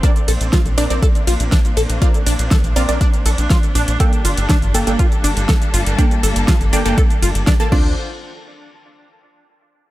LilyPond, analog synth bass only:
\new Staff \with { instrumentName = "Analog synth bass" } { \clef bass \time 4/4 \key bes \lydian \tempo 4 = 121 r8 bes,,16 bes,,16 r16 bes,,16 bes,,16 bes,,16 r8 bes,,16 bes,,16 r8 bes,,16 bes,,16 | r8 bes,,16 bes,,16 r16 bes,,16 bes,,16 bes,,16 r8 bes,,16 bes,,16 r8 bes,,16 bes,,16 | r8 g,,16 g,,16 r16 g,,16 g,,16 g,,16 r8 g,,16 g,,16 r8 g,,16 g,,16 | r8 g,,16 g,,16 r16 g,,16 g,,16 g,,16 r8 g,,16 g,,16 r8 d,8 |
r1 | }